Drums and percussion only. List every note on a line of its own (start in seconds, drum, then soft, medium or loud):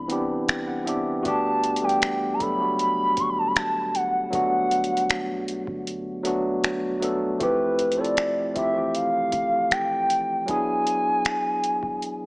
0.10 closed hi-hat medium
0.49 finger snap loud
0.49 closed hi-hat medium
0.87 closed hi-hat medium
1.25 kick loud
1.25 closed hi-hat medium
1.64 closed hi-hat medium
1.76 closed hi-hat medium
1.89 closed hi-hat soft
2.02 finger snap loud
2.02 closed hi-hat medium
2.40 kick medium
2.40 closed hi-hat medium
2.79 closed hi-hat medium
3.17 kick medium
3.17 closed hi-hat medium
3.56 finger snap loud
3.56 closed hi-hat medium
3.95 closed hi-hat medium
4.33 kick loud
4.33 closed hi-hat medium
4.71 closed hi-hat medium
4.84 closed hi-hat medium
4.97 closed hi-hat soft
5.10 finger snap loud
5.10 closed hi-hat medium
5.48 closed hi-hat medium
5.67 kick medium
5.87 closed hi-hat medium
6.25 closed hi-hat medium
6.64 finger snap loud
6.64 closed hi-hat medium
7.02 closed hi-hat medium
7.40 kick loud
7.40 closed hi-hat medium
7.79 closed hi-hat medium
7.92 closed hi-hat medium
8.04 closed hi-hat soft
8.17 finger snap loud
8.17 closed hi-hat medium
8.56 kick medium
8.56 closed hi-hat medium
8.95 closed hi-hat medium
9.32 kick medium
9.32 closed hi-hat medium
9.71 finger snap loud
9.71 closed hi-hat medium
10.10 closed hi-hat medium
10.48 kick loud
10.48 closed hi-hat medium
10.87 closed hi-hat medium
11.25 finger snap loud
11.25 closed hi-hat medium
11.64 closed hi-hat medium
11.83 kick loud
12.02 closed hi-hat medium